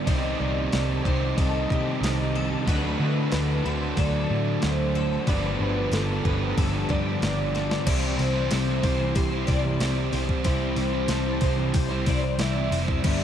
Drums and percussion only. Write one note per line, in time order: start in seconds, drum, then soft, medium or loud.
0.07 kick loud
0.07 open hi-hat medium
0.72 snare loud
0.72 open hi-hat medium
1.05 kick medium
1.38 kick loud
1.38 open hi-hat medium
1.70 kick medium
2.03 snare loud
2.03 open hi-hat medium
2.68 kick loud
2.68 open hi-hat medium
3.32 snare loud
3.32 open hi-hat medium
3.66 snare soft
3.97 kick loud
3.97 open hi-hat medium
4.62 snare loud
4.62 open hi-hat medium
5.27 kick loud
5.27 open hi-hat medium
5.93 snare loud
5.93 open hi-hat medium
6.25 kick medium
6.58 kick loud
6.58 open hi-hat medium
6.90 kick medium
7.22 snare loud
7.22 open hi-hat medium
7.56 snare medium
7.71 snare medium
7.87 kick loud
7.87 open hi-hat medium
7.87 crash loud
8.19 open hi-hat medium
8.51 snare loud
8.51 open hi-hat medium
8.83 kick medium
8.83 open hi-hat medium
9.16 kick loud
9.16 open hi-hat medium
9.48 kick medium
9.48 open hi-hat medium
9.80 snare loud
9.80 open hi-hat medium
10.13 open hi-hat medium
10.29 kick medium
10.44 kick loud
10.44 open hi-hat medium
10.76 open hi-hat medium
11.08 snare loud
11.08 open hi-hat medium
11.41 kick medium
11.41 open hi-hat medium
11.74 kick loud
11.74 open hi-hat medium
12.06 kick medium
12.06 open hi-hat medium
12.39 snare loud
12.39 open hi-hat medium
12.72 open hi-hat medium
12.88 kick medium
13.04 kick loud
13.04 crash medium